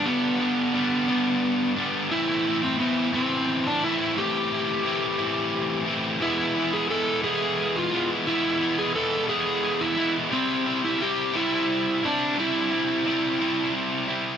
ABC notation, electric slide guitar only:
X:1
M:6/8
L:1/16
Q:3/8=58
K:Am
V:1 name="Electric slide guitar"
B,8- B,2 z2 | E3 C B,2 C3 D E2 | G8- G2 z2 | E3 ^G A2 G3 F2 z |
E3 ^G A2 G3 E2 z | C3 E G2 E4 D2 | E8 z4 |]